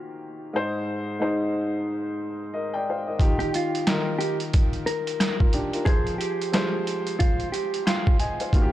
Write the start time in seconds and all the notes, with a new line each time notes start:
Already playing: D#3 A#3 F4 F#4 G4
0.53 G#2 G#3 D#4 C5
1.19 G#2 G#3 D#4 C5
2.54 A#4 D#5
2.74 D5 G5
2.89 C5 F5
3.07 A#4 D#5
3.19 D#3 D#4 F4 G4, kick, closed hi-hat
3.39 G4, closed hi-hat
3.54 F4, closed hi-hat
3.75 closed hi-hat
3.87 D#3 D#4 F4 A#4, cross-stick, snare, closed hi-hat
4.19 G4, closed hi-hat
4.40 closed hi-hat
4.53 kick, closed hi-hat
4.73 closed hi-hat
4.86 A#4, closed hi-hat
5.07 closed hi-hat
5.20 cross-stick, snare, closed hi-hat
5.39 F4 A#4, kick
5.53 D4 G4, closed hi-hat
5.73 F4 A#4, closed hi-hat
5.85 F3 F4 G#4 C5, kick, closed hi-hat
6.07 closed hi-hat
6.18 G4, closed hi-hat
6.42 closed hi-hat
6.52 F3 G#3 F4 C5, cross-stick, snare, closed hi-hat
6.87 closed hi-hat
7.07 closed hi-hat
7.19 F4, kick, closed hi-hat
7.40 closed hi-hat
7.52 G4, closed hi-hat
7.74 closed hi-hat
7.85 F4 G5 C6, cross-stick, snare, closed hi-hat
8.07 kick
8.19 D#5 G#5, closed hi-hat
8.40 C5 F5, closed hi-hat
8.53 D#3 A#3 F4 F#4, kick, closed hi-hat
8.62 G4